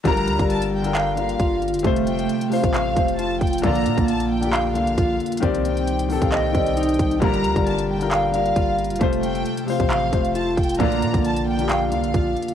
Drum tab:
HH |x-x-x-x-x-x---x-x---x-x-x---xxxx|x-x-x-x-x-x-o-x-x---x-x-x---xxxx|x-x-x-x-x-x---x-x---x-x-x---xxxx|x-x-x-x-x-x-o-x-x---x-x-xxxxx-x-|
CP |----------------x---------------|----------------x---------------|----------------x---------------|----------------x---------------|
BD |o-----o-----------------o-------|o-------------o-----o-------o---|o-----o-----------------o-------|o-------------o-----o-------o---|

HH |x-x-x-x-x-x---x-x---x-x-x---xxxx|x-x-x-x-x-x-o-x-x---x-x-x---xxxx|x-x-x-x-x-x---x-x---x-x-x---xxx-|
CP |----------------x---------------|----------------x---------------|----------------x---------------|
BD |o-----o-----------------o-------|o-------------o-----o-------o---|o-----o-----------------o-------|